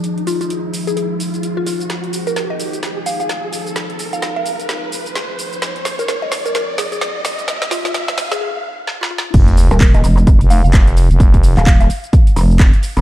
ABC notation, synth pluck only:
X:1
M:4/4
L:1/16
Q:"Swing 16ths" 1/4=129
K:Fm
V:1 name="Synth pluck"
z2 F F z3 A A z4 F F z | z3 B B e z4 f f z4 | z3 f f f4 z6 z | z3 B B e z B B z A A z4 |
z2 F F z3 A A z4 F F z | z3 B B e z4 f f z4 | z3 f f f4 z6 z |]